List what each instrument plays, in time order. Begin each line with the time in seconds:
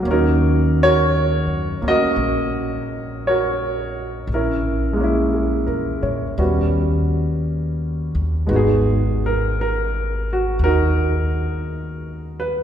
0.00 upright piano F#3 A#3
0.05 upright bass D#2, upright piano C#4
0.11 upright piano C#4 D#4 F#4 A#4
0.83 upright piano F#4 A#4 C#5
1.47 upright bass F#2
1.81 upright bass D2, upright piano A#3 C#4
1.88 upright piano F#4 A#4 D#5
2.16 upright bass A#1
3.27 upright piano F#4 A#4 C#5
4.27 upright bass A#1
4.34 upright piano C#4 E4 A#4
4.93 upright piano G#3 A#3
5.01 upright piano C#4 E4
5.34 upright piano G#4
5.67 upright bass E2, upright piano A#4
6.03 upright bass A#2, upright piano C#5
6.38 upright bass D#2, upright piano G3 B3 C#4 F#4
8.15 upright bass D#2
8.46 upright bass G#1, upright piano G#3 B3 D#4
8.51 upright piano D#4 F#4
8.55 upright piano B3 G#4
9.26 upright piano A#4
9.61 upright piano A#4
10.33 upright piano F#4
10.59 upright bass D#2
10.64 upright piano D#4 F#4 A#4
12.40 upright piano B4